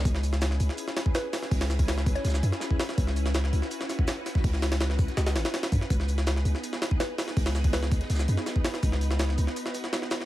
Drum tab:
HH |o---o-x-o---o---o---o---o---o---|o-o---o-o---o-x-o---o---o---o---|o---o-x-o---o---o---o---o---o---|o---o-o-o---o-x-o-o-o-o-o-o-o---|
SH |x---x---x---x---x---x---x---x---|----x---x---x---xxx-x---x---x---|x---x---x---x---x---x---x---x---|----x---x---x---x---x-------x---|
SD |--o---o-o-o---o---o-o---o---o-o-|--o-o---o-o---o-ooo---o-o---o-o-|--o---o-o-o---o---o-o---o---o-o-|--o-o-o-o-o---o-o-o-o-o-o-o---o-|
BD |o---------------------o---------|o-----o-----o-------------o-----|o---------------------o-------o-|o-----------o---------------o---|

HH |o---o-x-o---o---o---o---o---o---|o-o---o-o---o-x-o---o---o---o---|o---o-x-o---o---o---o---o---o---|
SH |x---x---x---x---x---x---x---x---|----x---x---x---xxx-x---x---x---|x---x---x---x---x---x---x---x---|
SD |--o---o-o-o---o---o-o---o---o-o-|--o-o---o-o---o-ooo---o-o---o-o-|--o---o-o-o---o---o-o-o-o-o-o-o-|
BD |o---------------------o---------|o-----o-----o-------------o-----|o-------------------------------|